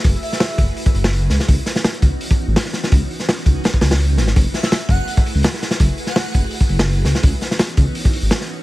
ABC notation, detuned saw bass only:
X:1
M:4/4
L:1/16
Q:1/4=167
K:F#dor
V:1 name="Detuned saw bass" clef=bass
F,,, z4 z F,,, z3 F,,,4 C,, z | C,, z4 z C,, z4 G,,, z4 | C,, z4 z C,, z3 C,,4 G,,,2 | F,,, z4 z F,,, z4 C,, z4 |
F,,, z4 z F,,, z3 F,,,4 C,, z | C,, z4 z C,, z4 G,,, z4 |]